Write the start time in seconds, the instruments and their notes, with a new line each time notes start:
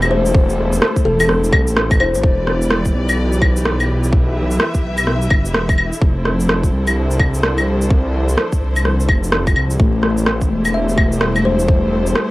Already playing: detuned saw bass E1, string section A3 E4 G4 A4 C5
0.02 claves, shaker
0.11 kalimba C5
0.26 shaker
0.34 kick
0.50 shaker
0.73 shaker
0.82 cross-stick
0.96 kick, shaker
1.05 detuned saw bass E1, kalimba A4
1.20 kalimba A4, claves, shaker
1.29 cross-stick
1.44 shaker
1.53 detuned saw bass C2, kick, claves
1.67 detuned saw bass A1, shaker
1.77 cross-stick
1.91 kick, claves, shaker
2.00 detuned saw bass E1, synth keys E4, kalimba C5, claves
2.14 detuned saw bass A1, kalimba C5, shaker
2.23 detuned saw bass E1, string section E3 E4 G4 B4 D5, kick
2.47 cross-stick
2.62 shaker
2.70 cross-stick
2.85 kick, shaker
2.94 detuned saw bass B1
3.09 claves, shaker
3.33 shaker
3.42 kick, claves
3.57 shaker
3.65 detuned saw bass B1, cross-stick
3.80 claves, shaker
4.04 shaker
4.12 string section E5, kick
4.51 shaker
4.60 cross-stick
4.74 kick, shaker
4.83 detuned saw bass B1
4.98 claves, shaker
5.07 cross-stick
5.22 shaker
5.30 detuned saw bass G1, kick, claves
5.45 detuned saw bass E1, shaker
5.54 cross-stick
5.69 kick, claves, shaker
5.78 detuned saw bass E1, claves
5.93 shaker
6.01 detuned saw bass F1, string section F3 D4 A4 C5, kick
6.25 cross-stick
6.40 shaker
6.49 cross-stick
6.63 kick, shaker
6.72 detuned saw bass C2
6.87 claves, shaker
7.11 shaker
7.20 kick, claves
7.34 shaker
7.43 detuned saw bass C2, cross-stick
7.58 claves, shaker
7.82 shaker
7.90 kick
8.29 shaker
8.38 cross-stick
8.53 kick, shaker
8.61 detuned saw bass C2
8.76 claves, shaker
8.85 cross-stick
9.00 shaker
9.09 detuned saw bass F1, kick, claves
9.24 shaker
9.32 cross-stick
9.47 kick, claves, shaker
9.56 detuned saw bass C2, claves
9.71 shaker
9.79 detuned saw bass A1, string section A3 E4 G4 A4 C5, synth keys A3, kick
10.03 cross-stick
10.18 shaker
10.26 cross-stick
10.41 kick, shaker
10.51 detuned saw bass E1
10.65 claves, shaker
10.74 kalimba E5
10.89 shaker
10.98 kick, claves
11.12 shaker
11.21 detuned saw bass E1, synth keys G3, cross-stick
11.36 claves, shaker
11.45 kalimba C5
11.59 shaker
11.68 kick
12.07 shaker
12.15 cross-stick